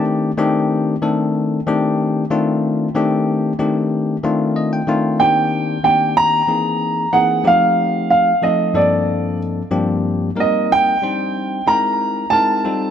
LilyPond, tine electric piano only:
\new Staff \with { instrumentName = "Tine electric piano" } { \time 4/4 \key c \dorian \tempo 4 = 93 << { r1 | r2. ees''16 g''8. | r1 | r1 |
r1 | } \\ { <ees a c' d' g'>8 <ees a c' d' g'>4 <ees a c' d' a'>4 <ees a c' d' g'>4 <ees a c' d' f'>8~ | <ees a c' d' f'>8 <ees a c' d' g'>4 <ees a c' d' g'>4 <ees a c' d' f'>4 <ees a c' d' f'>8 | <ees bes c' d' g'>4 <ees bes c' d' g'>4 <e bes c' dis' gis'>4 <e bes c' dis' gis'>8 <f a c' ees' g'>8~ | <f a c' ees' g'>4 <f a c' ees' a'>8 <g, f bes c' d' a'>4. <g, f bes c' d' g'>4 |
<g bes c' ees' bes'>4 <g c' d' ees' c''>4 <gis c' dis' e' bes'>4 <gis c' dis' e' bes'>8 <g c' ees' f' a'>8 | } >> }